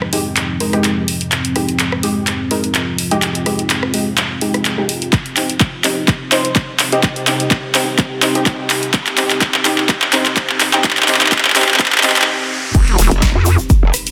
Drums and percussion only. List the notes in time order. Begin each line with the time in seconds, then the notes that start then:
0.02 cross-stick
0.13 open hi-hat
0.37 clap, closed hi-hat
0.60 open hi-hat
0.73 cross-stick, closed hi-hat
0.84 clap, closed hi-hat
1.08 open hi-hat
1.21 closed hi-hat
1.32 clap, closed hi-hat
1.45 closed hi-hat
1.56 cross-stick, open hi-hat
1.69 closed hi-hat
1.80 clap, closed hi-hat
1.92 cross-stick
2.03 open hi-hat
2.27 clap, closed hi-hat
2.51 open hi-hat
2.64 closed hi-hat
2.75 clap, closed hi-hat
2.98 open hi-hat
3.11 closed hi-hat
3.22 clap, closed hi-hat
3.35 closed hi-hat
3.46 cross-stick, open hi-hat
3.59 closed hi-hat
3.70 clap, closed hi-hat
3.83 cross-stick
3.94 open hi-hat
4.18 clap, closed hi-hat
4.41 open hi-hat
4.54 cross-stick, closed hi-hat
4.65 clap, closed hi-hat
4.89 open hi-hat
5.02 closed hi-hat
5.13 kick, clap, closed hi-hat
5.26 closed hi-hat
5.37 clap, open hi-hat
5.50 closed hi-hat
5.60 kick, clap, closed hi-hat
5.84 clap, open hi-hat
6.08 kick, clap, closed hi-hat
6.32 clap, open hi-hat
6.45 closed hi-hat
6.56 kick, clap, closed hi-hat
6.79 clap, open hi-hat
6.92 closed hi-hat
7.03 kick, clap, closed hi-hat
7.16 closed hi-hat
7.27 clap, open hi-hat
7.40 closed hi-hat
7.51 kick, clap, closed hi-hat
7.75 clap, open hi-hat
7.99 kick, clap, closed hi-hat
8.22 clap, open hi-hat
8.35 closed hi-hat
8.46 kick, clap, closed hi-hat
8.70 clap, open hi-hat
8.83 closed hi-hat
8.94 kick, clap, closed hi-hat
9.07 clap, closed hi-hat
9.18 clap, open hi-hat
9.30 clap, closed hi-hat
9.41 kick, clap, closed hi-hat
9.54 clap
9.65 clap, open hi-hat
9.78 clap
9.89 kick, clap, closed hi-hat
10.02 clap
10.13 clap, open hi-hat
10.26 clap, closed hi-hat
10.37 kick, clap, closed hi-hat
10.50 clap
10.60 clap, open hi-hat
10.73 clap, closed hi-hat
10.84 kick, clap, closed hi-hat
10.91 clap
10.97 clap, closed hi-hat
11.03 clap
11.08 clap, open hi-hat
11.15 clap
11.21 clap, closed hi-hat
11.26 clap
11.32 kick, clap, closed hi-hat
11.38 clap
11.45 clap
11.50 clap
11.56 clap, open hi-hat
11.62 clap
11.69 clap
11.74 clap
11.79 kick, clap, closed hi-hat
11.86 clap
11.92 clap
11.98 clap
12.03 clap, open hi-hat
12.10 clap
12.16 clap, closed hi-hat
12.22 clap
12.75 kick, closed hi-hat, crash, shaker
12.88 closed hi-hat
12.99 open hi-hat, shaker
13.11 closed hi-hat, shaker
13.22 kick, snare, closed hi-hat, shaker
13.46 open hi-hat, shaker
13.59 shaker
13.70 kick, closed hi-hat, shaker
13.94 cross-stick, open hi-hat, shaker
14.06 closed hi-hat, shaker